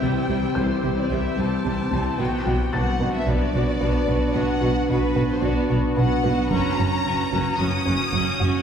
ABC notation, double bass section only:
X:1
M:4/4
L:1/8
Q:1/4=111
K:Bphr
V:1 name="Double bass section" clef=bass
C,, C,, C,, C,, C,, C,, C,, C,, | B,,, B,,, B,,, B,,, B,,, B,,, B,,, B,,, | B,,, B,,, B,,, B,,, B,,, B,,, B,,, B,,, | F,,, F,,, F,,, F,,, F,,, F,,, F,,, F,,, |]